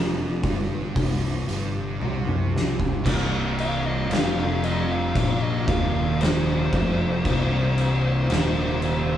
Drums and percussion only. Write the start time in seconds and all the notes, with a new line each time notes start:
0.43 kick, open hi-hat
0.96 kick, open hi-hat
1.49 open hi-hat
2.01 high tom
2.27 mid tom
2.56 snare
2.80 kick
3.06 kick, crash
3.59 crash
4.11 snare, crash
4.64 crash
5.16 kick, crash
5.68 kick, crash
6.21 snare, crash
6.73 kick, crash
7.25 kick, crash
7.78 crash
8.30 snare, crash
8.82 crash